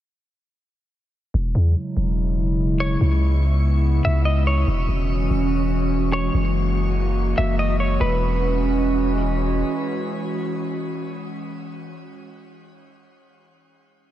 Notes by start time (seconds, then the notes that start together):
1.34 E1 C#3 F#3 G#3 E4
1.55 E2
1.97 E1
2.80 C#5
3.01 C#2 B3
4.05 C#2 E5
4.25 D#5
4.47 C#5
4.67 E1 E3 G#3 C#4 F#4
4.88 E1
5.30 E1
6.13 C#5
6.34 F#1 A#3 F#4
7.38 F#1 E5
7.59 D#5
7.80 C#5
8.01 E1 E3 G#3 C#4 F#4 B4